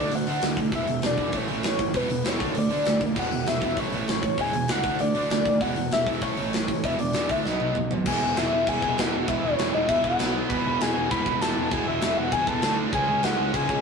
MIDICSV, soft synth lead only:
0, 0, Header, 1, 2, 480
1, 0, Start_track
1, 0, Tempo, 305188
1, 1148, Time_signature, 4, 2, 24, 8
1, 21722, End_track
2, 0, Start_track
2, 0, Title_t, "Soft synth lead"
2, 0, Program_c, 0, 80
2, 0, Note_on_c, 0, 74, 94
2, 237, Note_on_c, 0, 78, 102
2, 261, Note_off_c, 0, 74, 0
2, 933, Note_off_c, 0, 78, 0
2, 1181, Note_on_c, 0, 76, 93
2, 1612, Note_off_c, 0, 76, 0
2, 1657, Note_on_c, 0, 74, 94
2, 2159, Note_on_c, 0, 73, 94
2, 2182, Note_off_c, 0, 74, 0
2, 2614, Note_off_c, 0, 73, 0
2, 2636, Note_on_c, 0, 73, 92
2, 3087, Note_on_c, 0, 71, 87
2, 3111, Note_off_c, 0, 73, 0
2, 3585, Note_on_c, 0, 73, 101
2, 3609, Note_off_c, 0, 71, 0
2, 4058, Note_on_c, 0, 74, 91
2, 4082, Note_off_c, 0, 73, 0
2, 4764, Note_off_c, 0, 74, 0
2, 5018, Note_on_c, 0, 78, 99
2, 5474, Note_on_c, 0, 76, 106
2, 5498, Note_off_c, 0, 78, 0
2, 5967, Note_on_c, 0, 73, 104
2, 5991, Note_off_c, 0, 76, 0
2, 6439, Note_off_c, 0, 73, 0
2, 6450, Note_on_c, 0, 73, 96
2, 6929, Note_on_c, 0, 80, 111
2, 6953, Note_off_c, 0, 73, 0
2, 7401, Note_off_c, 0, 80, 0
2, 7410, Note_on_c, 0, 78, 115
2, 7848, Note_off_c, 0, 78, 0
2, 7872, Note_on_c, 0, 74, 112
2, 8319, Note_off_c, 0, 74, 0
2, 8348, Note_on_c, 0, 74, 91
2, 8830, Note_on_c, 0, 78, 99
2, 8854, Note_off_c, 0, 74, 0
2, 9313, Note_off_c, 0, 78, 0
2, 9322, Note_on_c, 0, 76, 106
2, 9766, Note_off_c, 0, 76, 0
2, 9784, Note_on_c, 0, 73, 98
2, 10774, Note_on_c, 0, 76, 89
2, 10798, Note_off_c, 0, 73, 0
2, 10995, Note_off_c, 0, 76, 0
2, 11004, Note_on_c, 0, 74, 99
2, 11492, Note_on_c, 0, 76, 90
2, 11516, Note_off_c, 0, 74, 0
2, 11734, Note_on_c, 0, 75, 89
2, 11757, Note_off_c, 0, 76, 0
2, 12450, Note_off_c, 0, 75, 0
2, 12695, Note_on_c, 0, 80, 89
2, 13177, Note_on_c, 0, 76, 100
2, 13201, Note_off_c, 0, 80, 0
2, 13661, Note_on_c, 0, 80, 106
2, 13685, Note_off_c, 0, 76, 0
2, 14157, Note_on_c, 0, 78, 94
2, 14181, Note_off_c, 0, 80, 0
2, 14601, Note_on_c, 0, 76, 96
2, 14625, Note_off_c, 0, 78, 0
2, 14822, Note_off_c, 0, 76, 0
2, 14831, Note_on_c, 0, 73, 106
2, 15322, Note_on_c, 0, 75, 97
2, 15345, Note_off_c, 0, 73, 0
2, 15542, Note_on_c, 0, 76, 113
2, 15565, Note_off_c, 0, 75, 0
2, 15770, Note_on_c, 0, 78, 107
2, 15794, Note_off_c, 0, 76, 0
2, 16268, Note_off_c, 0, 78, 0
2, 16493, Note_on_c, 0, 83, 112
2, 17013, Note_on_c, 0, 80, 104
2, 17037, Note_off_c, 0, 83, 0
2, 17464, Note_off_c, 0, 80, 0
2, 17474, Note_on_c, 0, 83, 120
2, 17952, Note_on_c, 0, 81, 102
2, 17976, Note_off_c, 0, 83, 0
2, 18436, Note_on_c, 0, 80, 97
2, 18459, Note_off_c, 0, 81, 0
2, 18666, Note_off_c, 0, 80, 0
2, 18675, Note_on_c, 0, 76, 102
2, 19147, Note_on_c, 0, 78, 99
2, 19171, Note_off_c, 0, 76, 0
2, 19384, Note_on_c, 0, 80, 113
2, 19408, Note_off_c, 0, 78, 0
2, 19618, Note_on_c, 0, 81, 102
2, 19642, Note_off_c, 0, 80, 0
2, 20106, Note_off_c, 0, 81, 0
2, 20353, Note_on_c, 0, 80, 100
2, 20576, Note_off_c, 0, 80, 0
2, 20592, Note_on_c, 0, 80, 100
2, 20823, Note_on_c, 0, 78, 110
2, 20846, Note_off_c, 0, 80, 0
2, 21309, Note_on_c, 0, 80, 103
2, 21333, Note_off_c, 0, 78, 0
2, 21722, Note_off_c, 0, 80, 0
2, 21722, End_track
0, 0, End_of_file